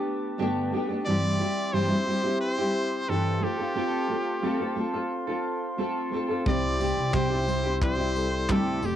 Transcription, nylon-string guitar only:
Already playing: A3 B3 D4 G4
0.38 G2 D3 A3 B3 D4 G4
0.72 A3 B3 D4 G4
0.89 A3 B3 D4 G4
1.06 G2 E3 G3 C4 E4 G4
1.39 G3 C4 E4 G4
1.73 G2 E3 G3 C4 E4 G4
1.89 G3 C4 E4 G4
2.06 G3 C4 E4 G4
2.23 G3 C4 E4 G4
2.58 G3 C4 E4 G4
3.09 G2 E3 G3 C4 E4 G4
3.41 A3 C4 F4 A4
3.59 C4 F4 A4
3.75 A3 C4 F4 A4
4.09 A3 C4 F4 A4
4.43 A3 C4 F4 A4
4.59 C4 F4 A4
4.75 A3 C4 F4 A4
4.94 C4 F4 A4
5.27 C4 F4 A4
5.78 A3 C4 F4 A4
6.12 A3 C4 F4 A4
6.29 C4 F4 A4
6.45 C3 G3 C4 E4 G4
6.79 G3 C4 E4 G4
7.13 C3 G3 C4 E4 G4
7.30 C4 E4 G4
7.47 G3 C4 E4 G4
7.63 C4 E4 G4
7.97 C4 E4 G4
8.48 C3 G3 C4 E4 G4
8.81 G3 C4 E4 G4

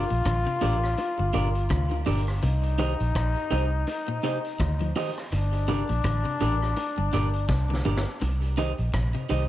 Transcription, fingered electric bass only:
0.11 A#1
0.26 A1
0.63 A1
1.20 G1
1.35 G1
1.71 D2
2.07 G1
2.44 C2
3.01 A#1
3.16 A#1
3.52 C2
4.60 D2
5.32 G1
5.90 A#1
6.05 A1
6.41 A1
6.98 G1
7.14 G1
7.49 C2
7.86 G1
8.22 C2
8.79 A#1
8.94 A#1
9.31 C2

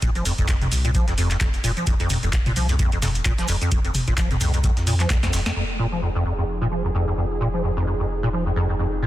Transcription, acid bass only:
0.02 A#2
0.15 F3
0.25 F2
0.38 F2
0.48 F2
0.62 F2
0.85 A#2
0.95 F3
1.08 F2
1.18 F2
1.31 F2
1.41 F2
1.64 A#2
1.77 F3
1.87 F2
2.00 F2
2.10 F2
2.23 F2
2.46 A#2
2.56 F3
2.69 F2
2.79 F2
2.92 F2
3.02 F2
3.25 A#2
3.38 F3
3.48 F2
3.62 F2
3.72 F2
3.85 F2
4.08 A#2
4.18 F3
4.31 F2
4.41 F2
4.54 F2
4.64 F2
4.87 A#2
5.00 F3
5.10 F2
5.23 F2
5.33 F2
5.46 F2
5.56 F2
5.79 A#2
5.92 F3
6.02 F2
6.15 F2
6.25 F2
6.38 F2
6.61 A#2
6.72 F3
6.85 F2
6.95 F2
7.08 F2
7.18 F2
7.41 A#2
7.54 F3
7.64 F2
7.77 F2
7.87 F2
8.00 F2
8.23 A#2
8.33 F3
8.46 F2
8.56 F2
8.69 F2
8.79 F2
9.02 A#2

